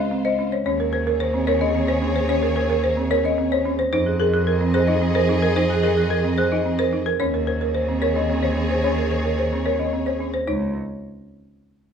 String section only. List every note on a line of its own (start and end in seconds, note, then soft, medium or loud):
0.00 0.48 F4 medium
0.00 0.48 C5 medium
0.65 3.75 G#4 medium
0.65 3.75 C#5 medium
3.93 7.03 G#4 loud
3.93 7.03 D#5 loud
7.20 10.30 G#4 medium
7.20 10.30 C#5 medium